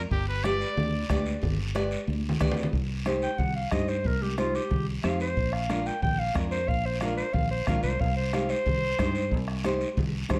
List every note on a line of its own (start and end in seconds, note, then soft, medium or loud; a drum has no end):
0.11 0.63 G1 loud
0.11 0.27 G4 medium
0.11 bombo low medium
0.11 long guiro medium
0.29 0.45 B4 loud
0.44 0.67 G4 medium
0.44 0.67 B4 medium
0.44 1.09 D5 loud
0.44 0.68 D5 medium
0.44 bombo rim medium
0.44 high conga medium
0.44 short guiro medium
0.61 short guiro medium
0.77 1.03 D2 medium
0.77 low conga medium
0.77 long guiro medium
1.09 1.36 D2 medium
1.09 1.33 G4 medium
1.09 1.33 B4 medium
1.09 1.33 D5 loud
1.09 bombo low medium
1.09 bombo rim medium
1.09 high conga medium
1.09 short guiro medium
1.26 short guiro medium
1.42 1.95 G1 loud
1.42 bombo low medium
1.42 low conga medium
1.42 long guiro medium
1.75 1.98 G4 medium
1.75 1.98 B4 medium
1.75 1.98 D5 loud
1.75 bombo rim medium
1.75 high conga medium
1.75 short guiro medium
1.91 short guiro medium
2.07 2.34 D2 medium
2.07 high conga medium
2.07 long guiro medium
2.29 low conga loud
2.40 2.67 D2 medium
2.40 2.64 G4 medium
2.40 2.64 B4 medium
2.40 2.64 D5 medium
2.40 bombo low medium
2.40 bombo rim medium
2.40 low conga medium
2.40 short guiro medium
2.51 low conga loud
2.57 short guiro medium
2.63 low conga medium
2.73 3.26 C2 loud
2.73 bombo low medium
2.73 long guiro medium
3.06 3.29 D#4 medium
3.06 3.29 G4 medium
3.06 3.30 C5 medium
3.06 bombo rim medium
3.06 high conga medium
3.06 short guiro medium
3.22 3.40 G5 medium
3.22 short guiro medium
3.38 3.65 C2 medium
3.38 3.55 F#5 medium
3.38 bombo low medium
3.38 low conga medium
3.38 long guiro medium
3.55 3.71 F5 medium
3.71 4.06 G2 medium
3.71 3.95 D#4 medium
3.71 3.95 G4 medium
3.71 3.96 C5 medium
3.71 3.90 D#5 medium
3.71 bombo low medium
3.71 bombo rim medium
3.71 high conga medium
3.71 short guiro medium
3.88 4.09 C5 medium
3.88 short guiro medium
4.04 4.58 C2 loud
4.04 4.24 A#4 medium
4.04 bombo low medium
4.04 long guiro medium
4.22 4.38 G4 medium
4.22 high conga medium
4.38 4.61 D#4 medium
4.38 4.57 F4 medium
4.38 4.61 G4 medium
4.38 4.61 C5 medium
4.38 bombo rim medium
4.38 high conga medium
4.38 short guiro medium
4.55 4.87 G4 medium
4.55 short guiro medium
4.71 4.97 C2 medium
4.71 bombo low medium
4.71 low conga medium
4.71 long guiro medium
5.03 5.38 F2 medium
5.03 5.27 D#4 medium
5.03 5.27 G4 medium
5.03 5.27 C5 medium
5.03 5.20 F5 medium
5.03 bombo rim medium
5.03 high conga medium
5.03 short guiro medium
5.20 5.54 C5 medium
5.20 short guiro medium
5.37 5.90 A#1 loud
5.37 bombo low medium
5.37 long guiro medium
5.53 5.88 F5 medium
5.53 bombo rim medium
5.69 5.93 D4 medium
5.69 5.93 F4 medium
5.69 5.93 A#4 medium
5.69 bombo rim medium
5.69 high conga medium
5.69 short guiro medium
5.86 6.02 G5 medium
5.86 short guiro medium
6.02 6.29 A#1 medium
6.02 6.21 G5 loud
6.02 bombo low medium
6.02 low conga medium
6.02 long guiro medium
6.19 6.35 F5 loud
6.34 6.70 F2 medium
6.34 6.58 D4 medium
6.34 6.58 F4 medium
6.34 6.58 A#4 medium
6.34 bombo low medium
6.34 bombo rim medium
6.34 high conga medium
6.34 short guiro medium
6.51 6.70 C5 loud
6.51 short guiro medium
6.68 7.21 A#1 loud
6.68 6.87 F5 loud
6.68 bombo low medium
6.68 long guiro medium
6.86 7.00 C5 medium
7.01 7.25 D4 medium
7.01 7.25 F4 medium
7.01 7.25 A#4 medium
7.01 7.16 F5 medium
7.01 bombo rim medium
7.01 high conga medium
7.01 short guiro medium
7.17 7.35 C5 medium
7.17 short guiro medium
7.34 7.60 A#1 medium
7.34 7.50 F5 medium
7.34 bombo low medium
7.34 low conga medium
7.34 long guiro medium
7.51 7.67 C5 medium
7.66 7.82 A#1 medium
7.66 7.91 D4 medium
7.66 7.91 F4 medium
7.66 7.91 A#4 medium
7.66 7.82 F5 medium
7.66 bombo low medium
7.66 bombo rim medium
7.66 high conga medium
7.66 low conga medium
7.66 short guiro medium
7.83 8.00 C2 medium
7.83 8.02 C5 medium
7.83 short guiro medium
7.99 8.53 C2 medium
7.99 8.16 F5 medium
7.99 bombo low medium
7.99 long guiro medium
8.17 8.33 C5 medium
8.33 8.56 D#4 medium
8.33 8.56 G4 medium
8.33 8.56 C5 medium
8.33 8.52 F5 medium
8.33 bombo rim medium
8.33 high conga medium
8.33 short guiro medium
8.49 9.46 C5 loud
8.49 short guiro medium
8.66 8.92 C2 medium
8.66 bombo low medium
8.66 low conga medium
8.66 long guiro medium
8.98 9.33 G2 medium
8.98 9.22 D#4 medium
8.98 9.22 G4 medium
8.98 9.22 C5 medium
8.98 bombo low medium
8.98 bombo rim medium
8.98 high conga medium
8.98 short guiro medium
9.15 short guiro medium
9.31 9.84 C2 loud
9.31 bombo low medium
9.31 long guiro medium
9.48 bombo rim medium
9.64 9.88 D#4 medium
9.64 9.88 G4 medium
9.64 9.88 C5 loud
9.64 bombo rim medium
9.64 high conga medium
9.64 short guiro medium
9.81 short guiro medium
9.97 10.23 C2 medium
9.97 bombo low medium
9.97 low conga medium
9.97 long guiro medium
10.29 10.39 G2 medium
10.29 10.39 D#4 medium
10.29 10.39 G4 medium
10.29 10.39 C5 medium
10.29 bombo low medium
10.29 bombo rim medium
10.29 high conga medium
10.29 low conga medium
10.29 short guiro medium